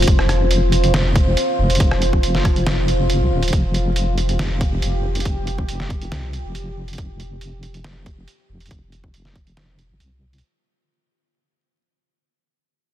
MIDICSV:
0, 0, Header, 1, 4, 480
1, 0, Start_track
1, 0, Tempo, 431655
1, 83, Time_signature, 4, 2, 24, 8
1, 14384, End_track
2, 0, Start_track
2, 0, Title_t, "Ambient pad"
2, 0, Program_c, 0, 92
2, 0, Note_on_c, 0, 65, 78
2, 0, Note_on_c, 0, 72, 78
2, 3925, Note_on_c, 0, 67, 80
2, 3947, Note_off_c, 0, 72, 0
2, 11629, Note_off_c, 0, 67, 0
2, 11653, Note_off_c, 0, 65, 0
2, 14384, End_track
3, 0, Start_track
3, 0, Title_t, "Wobble bass"
3, 0, Program_c, 1, 39
3, 84, Note_on_c, 1, 29, 97
3, 1509, Note_off_c, 1, 29, 0
3, 1764, Note_on_c, 1, 29, 97
3, 1985, Note_off_c, 1, 29, 0
3, 2004, Note_on_c, 1, 29, 97
3, 3570, Note_on_c, 1, 36, 97
3, 3587, Note_off_c, 1, 29, 0
3, 3674, Note_off_c, 1, 36, 0
3, 3683, Note_on_c, 1, 27, 93
3, 3905, Note_off_c, 1, 27, 0
3, 3923, Note_on_c, 1, 29, 99
3, 5349, Note_off_c, 1, 29, 0
3, 5364, Note_on_c, 1, 29, 93
3, 5829, Note_off_c, 1, 29, 0
3, 5844, Note_on_c, 1, 29, 96
3, 6789, Note_off_c, 1, 29, 0
3, 6804, Note_on_c, 1, 36, 83
3, 7153, Note_off_c, 1, 36, 0
3, 7170, Note_on_c, 1, 29, 96
3, 7749, Note_off_c, 1, 29, 0
3, 7765, Note_on_c, 1, 29, 93
3, 9189, Note_off_c, 1, 29, 0
3, 9443, Note_on_c, 1, 29, 95
3, 9665, Note_off_c, 1, 29, 0
3, 9684, Note_on_c, 1, 29, 96
3, 11002, Note_off_c, 1, 29, 0
3, 11008, Note_on_c, 1, 32, 88
3, 11114, Note_off_c, 1, 32, 0
3, 11123, Note_on_c, 1, 36, 85
3, 11588, Note_off_c, 1, 36, 0
3, 14384, End_track
4, 0, Start_track
4, 0, Title_t, "Drums"
4, 26, Note_on_c, 9, 42, 66
4, 83, Note_off_c, 9, 42, 0
4, 83, Note_on_c, 9, 42, 80
4, 84, Note_on_c, 9, 36, 122
4, 194, Note_off_c, 9, 42, 0
4, 195, Note_off_c, 9, 36, 0
4, 210, Note_on_c, 9, 37, 47
4, 321, Note_off_c, 9, 37, 0
4, 323, Note_on_c, 9, 37, 56
4, 323, Note_on_c, 9, 42, 50
4, 435, Note_off_c, 9, 37, 0
4, 435, Note_off_c, 9, 42, 0
4, 564, Note_on_c, 9, 42, 77
4, 675, Note_off_c, 9, 42, 0
4, 804, Note_on_c, 9, 42, 52
4, 915, Note_off_c, 9, 42, 0
4, 929, Note_on_c, 9, 42, 36
4, 1040, Note_off_c, 9, 42, 0
4, 1043, Note_on_c, 9, 38, 116
4, 1043, Note_on_c, 9, 42, 75
4, 1155, Note_off_c, 9, 38, 0
4, 1155, Note_off_c, 9, 42, 0
4, 1284, Note_on_c, 9, 36, 103
4, 1284, Note_on_c, 9, 42, 50
4, 1395, Note_off_c, 9, 42, 0
4, 1396, Note_off_c, 9, 36, 0
4, 1523, Note_on_c, 9, 42, 74
4, 1635, Note_off_c, 9, 42, 0
4, 1889, Note_on_c, 9, 42, 49
4, 1946, Note_off_c, 9, 42, 0
4, 1946, Note_on_c, 9, 42, 65
4, 2003, Note_off_c, 9, 42, 0
4, 2003, Note_on_c, 9, 42, 76
4, 2004, Note_on_c, 9, 36, 118
4, 2114, Note_off_c, 9, 42, 0
4, 2115, Note_off_c, 9, 36, 0
4, 2129, Note_on_c, 9, 37, 46
4, 2240, Note_off_c, 9, 37, 0
4, 2243, Note_on_c, 9, 42, 50
4, 2354, Note_off_c, 9, 42, 0
4, 2370, Note_on_c, 9, 36, 61
4, 2481, Note_off_c, 9, 36, 0
4, 2483, Note_on_c, 9, 42, 74
4, 2594, Note_off_c, 9, 42, 0
4, 2610, Note_on_c, 9, 38, 36
4, 2721, Note_off_c, 9, 38, 0
4, 2724, Note_on_c, 9, 36, 104
4, 2724, Note_on_c, 9, 37, 55
4, 2724, Note_on_c, 9, 42, 47
4, 2835, Note_off_c, 9, 36, 0
4, 2835, Note_off_c, 9, 37, 0
4, 2835, Note_off_c, 9, 42, 0
4, 2850, Note_on_c, 9, 42, 34
4, 2961, Note_off_c, 9, 42, 0
4, 2963, Note_on_c, 9, 38, 111
4, 2963, Note_on_c, 9, 42, 74
4, 3075, Note_off_c, 9, 38, 0
4, 3075, Note_off_c, 9, 42, 0
4, 3204, Note_on_c, 9, 42, 49
4, 3316, Note_off_c, 9, 42, 0
4, 3443, Note_on_c, 9, 42, 70
4, 3554, Note_off_c, 9, 42, 0
4, 3809, Note_on_c, 9, 42, 46
4, 3867, Note_off_c, 9, 42, 0
4, 3867, Note_on_c, 9, 42, 61
4, 3923, Note_off_c, 9, 42, 0
4, 3923, Note_on_c, 9, 42, 74
4, 3924, Note_on_c, 9, 36, 114
4, 4035, Note_off_c, 9, 36, 0
4, 4035, Note_off_c, 9, 42, 0
4, 4163, Note_on_c, 9, 42, 46
4, 4275, Note_off_c, 9, 42, 0
4, 4404, Note_on_c, 9, 42, 69
4, 4515, Note_off_c, 9, 42, 0
4, 4644, Note_on_c, 9, 42, 47
4, 4755, Note_off_c, 9, 42, 0
4, 4770, Note_on_c, 9, 42, 32
4, 4881, Note_off_c, 9, 42, 0
4, 4884, Note_on_c, 9, 38, 109
4, 4884, Note_on_c, 9, 42, 70
4, 4995, Note_off_c, 9, 38, 0
4, 4995, Note_off_c, 9, 42, 0
4, 5124, Note_on_c, 9, 36, 97
4, 5124, Note_on_c, 9, 42, 47
4, 5235, Note_off_c, 9, 36, 0
4, 5235, Note_off_c, 9, 42, 0
4, 5363, Note_on_c, 9, 42, 69
4, 5475, Note_off_c, 9, 42, 0
4, 5729, Note_on_c, 9, 42, 44
4, 5786, Note_off_c, 9, 42, 0
4, 5786, Note_on_c, 9, 42, 57
4, 5842, Note_off_c, 9, 42, 0
4, 5842, Note_on_c, 9, 42, 75
4, 5844, Note_on_c, 9, 36, 106
4, 5953, Note_off_c, 9, 42, 0
4, 5955, Note_off_c, 9, 36, 0
4, 6083, Note_on_c, 9, 42, 46
4, 6194, Note_off_c, 9, 42, 0
4, 6210, Note_on_c, 9, 36, 57
4, 6322, Note_off_c, 9, 36, 0
4, 6323, Note_on_c, 9, 42, 70
4, 6434, Note_off_c, 9, 42, 0
4, 6450, Note_on_c, 9, 38, 33
4, 6561, Note_off_c, 9, 38, 0
4, 6563, Note_on_c, 9, 42, 45
4, 6565, Note_on_c, 9, 36, 93
4, 6674, Note_off_c, 9, 42, 0
4, 6676, Note_off_c, 9, 36, 0
4, 6689, Note_on_c, 9, 42, 32
4, 6800, Note_off_c, 9, 42, 0
4, 6803, Note_on_c, 9, 38, 101
4, 6803, Note_on_c, 9, 42, 69
4, 6914, Note_off_c, 9, 38, 0
4, 6914, Note_off_c, 9, 42, 0
4, 7042, Note_on_c, 9, 42, 46
4, 7154, Note_off_c, 9, 42, 0
4, 7282, Note_on_c, 9, 42, 67
4, 7393, Note_off_c, 9, 42, 0
4, 7650, Note_on_c, 9, 42, 44
4, 7706, Note_off_c, 9, 42, 0
4, 7706, Note_on_c, 9, 42, 57
4, 7763, Note_off_c, 9, 42, 0
4, 7763, Note_on_c, 9, 42, 73
4, 7765, Note_on_c, 9, 36, 105
4, 7874, Note_off_c, 9, 42, 0
4, 7876, Note_off_c, 9, 36, 0
4, 8004, Note_on_c, 9, 42, 47
4, 8115, Note_off_c, 9, 42, 0
4, 8243, Note_on_c, 9, 42, 72
4, 8354, Note_off_c, 9, 42, 0
4, 8482, Note_on_c, 9, 42, 47
4, 8594, Note_off_c, 9, 42, 0
4, 8609, Note_on_c, 9, 42, 32
4, 8720, Note_off_c, 9, 42, 0
4, 8722, Note_on_c, 9, 38, 104
4, 8722, Note_on_c, 9, 42, 67
4, 8833, Note_off_c, 9, 38, 0
4, 8833, Note_off_c, 9, 42, 0
4, 8963, Note_on_c, 9, 42, 48
4, 8964, Note_on_c, 9, 36, 94
4, 9074, Note_off_c, 9, 42, 0
4, 9076, Note_off_c, 9, 36, 0
4, 9203, Note_on_c, 9, 42, 68
4, 9314, Note_off_c, 9, 42, 0
4, 9568, Note_on_c, 9, 42, 44
4, 9626, Note_off_c, 9, 42, 0
4, 9626, Note_on_c, 9, 42, 60
4, 9683, Note_off_c, 9, 42, 0
4, 9683, Note_on_c, 9, 42, 75
4, 9684, Note_on_c, 9, 36, 107
4, 9794, Note_off_c, 9, 42, 0
4, 9795, Note_off_c, 9, 36, 0
4, 9922, Note_on_c, 9, 42, 50
4, 10034, Note_off_c, 9, 42, 0
4, 10050, Note_on_c, 9, 36, 56
4, 10161, Note_off_c, 9, 36, 0
4, 10162, Note_on_c, 9, 42, 70
4, 10274, Note_off_c, 9, 42, 0
4, 10288, Note_on_c, 9, 38, 32
4, 10400, Note_off_c, 9, 38, 0
4, 10403, Note_on_c, 9, 42, 49
4, 10404, Note_on_c, 9, 36, 93
4, 10515, Note_off_c, 9, 36, 0
4, 10515, Note_off_c, 9, 42, 0
4, 10529, Note_on_c, 9, 42, 34
4, 10640, Note_off_c, 9, 42, 0
4, 10642, Note_on_c, 9, 38, 99
4, 10642, Note_on_c, 9, 42, 74
4, 10753, Note_off_c, 9, 38, 0
4, 10753, Note_off_c, 9, 42, 0
4, 10882, Note_on_c, 9, 42, 47
4, 10993, Note_off_c, 9, 42, 0
4, 11122, Note_on_c, 9, 42, 72
4, 11233, Note_off_c, 9, 42, 0
4, 11489, Note_on_c, 9, 42, 46
4, 11546, Note_off_c, 9, 42, 0
4, 11546, Note_on_c, 9, 42, 61
4, 11657, Note_off_c, 9, 42, 0
4, 14384, End_track
0, 0, End_of_file